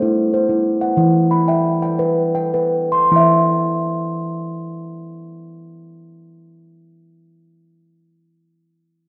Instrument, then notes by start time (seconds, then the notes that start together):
steel tongue drum
Already playing: C5
0.02 E4
0.34 C5
0.49 E4
0.81 F#5
0.97 E3 E4
1.31 B5
1.48 E5 G5
1.82 G5
1.99 B4
2.35 G5
2.54 B4
2.92 C6
3.11 E3 E4
3.16 E5